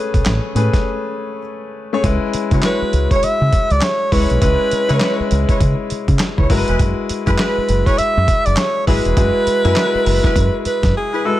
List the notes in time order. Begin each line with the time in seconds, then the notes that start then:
Already playing: A3 C#4 G#4 B4
0.14 B1, kick, closed hi-hat
0.25 A1, snare, clap, closed hi-hat
0.55 A2 A3 C#4 G#4 B4, closed hi-hat
0.73 kick, snare, closed hi-hat
1.93 A3 C#4 G#4 C#5
2.04 C#2 G#3 C#4 E4 B4, kick, closed hi-hat
2.33 muted fingered electric bass stroke, closed hi-hat
2.51 C#3 G#3 C#4 E4 F#4 B4 C#5, kick, closed hi-hat
2.63 E4 B4 C#5, snare, clap, closed hi-hat
2.82 muted fingered electric bass stroke
2.93 C#2, closed hi-hat
3.10 E4 B4 C#5, kick, closed hi-hat
3.23 E5, muted fingered electric bass stroke, closed hi-hat
3.41 C#3
3.53 kick, closed hi-hat
3.70 C#2 D5, closed hi-hat
3.81 C#5, snare, clap, closed hi-hat
4.11 C#2 G#3 C#4 E4 B4 C#5, kick, open hi-hat
4.30 B1, closed hi-hat
4.41 C#2 G#3 C#4 E4 B4, kick, closed hi-hat
4.71 muted fingered electric bass stroke, closed hi-hat
4.89 C#3 G#3 C#4 E4 B4 C#5, closed hi-hat
5.00 E4 B4 C#5, snare, clap, closed hi-hat
5.20 muted fingered electric bass stroke
5.31 C#2, closed hi-hat
5.48 E4 B4 C#5, kick, closed hi-hat
5.60 C#3, kick, closed hi-hat
5.90 muted fingered electric bass stroke, closed hi-hat
6.08 C#3, kick, closed hi-hat
6.19 snare, clap, closed hi-hat
6.37 C#2 E4 B4 C#5, kick
6.50 F#1 G#3 E4 F#4 A#4, kick, open hi-hat
6.57 B4
6.67 E1 E4 G#4 B4, closed hi-hat
6.79 F#1, kick, closed hi-hat
7.09 muted fingered electric bass stroke, closed hi-hat
7.27 F#2 G#3 E4 F#4 G#4 B4, kick, closed hi-hat
7.38 E4 G#4 B4, snare, clap, closed hi-hat
7.58 muted fingered electric bass stroke
7.69 F#1, closed hi-hat
7.86 E4 G#4 B4 C#5, kick, closed hi-hat
7.98 E5, muted fingered electric bass stroke, closed hi-hat
8.17 F#2
8.28 kick, closed hi-hat
8.45 F#1 D5, closed hi-hat
8.57 C#5, snare, clap, closed hi-hat
8.87 F#1 G#3 E4 F#4 G#4 B4, kick, open hi-hat
9.05 E1, closed hi-hat
9.17 F#1 G#3 E4 F#4 B4, kick, closed hi-hat
9.47 muted fingered electric bass stroke, closed hi-hat
9.64 F#2 G#3 E4 F#4 G#4 A#4 B4, closed hi-hat
9.72 E4 G#4 B4, clap
9.76 B4, snare, closed hi-hat
9.95 muted fingered electric bass stroke
10.06 F#1, open hi-hat
10.23 E4 G#4 B4, kick, snare
10.36 F#2, kick, closed hi-hat
10.65 B4, muted fingered electric bass stroke, closed hi-hat
10.83 F#2, kick, snare, closed hi-hat
10.97 G#4
11.12 E4 G#4 B4
11.25 G#3 E4 F#4 A4 B4